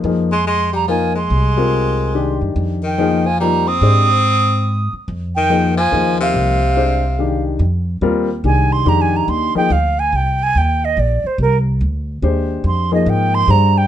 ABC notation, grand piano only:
X:1
M:3/4
L:1/8
Q:"Swing" 1/4=143
K:Fdor
V:1 name="Grand piano"
[F,B,EA] z3 [F,B,EB] z | z [CFGB]3 [E,A,DG]2- | [E,A,DG] z [F,B,EA] z [F,B,EF] z | [A,DGc] z4 z |
z2 [F,B,EA] z [F,B,EA]2- | [F,B,EA] z [A,DGc] z [E,A,DG]2 | z2 [G,CFB] z [E,A,DG]2 | [E,A,DG]3 [F,B,EA] z2 |
z6 | z4 [A,DGc]2- | [A,DGc] [F,B,EA]3 [DGAc]2 |]